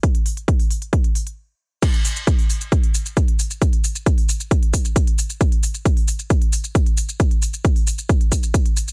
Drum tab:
CC |----------------|x---------------|----------------|----------------|
HH |xxoxxooxxxox----|xxoxxooxxxoxxxox|xxoxxooxxxoxxxox|xxoxxooxxxoxxxox|
SH |----------------|x-xxx-xxx-xxx-xx|x-xxx-xxx-xxx-xx|x-xxx-xxx-xxx-xx|
BD |o---o---o-------|o---o---o---o---|o---o---o-o-o---|o---o---o---o---|

CC |----------------|
HH |xxoxxooxxxoxxxox|
SH |x-xxx-xxx-xxx-xx|
BD |o---o---o-o-o---|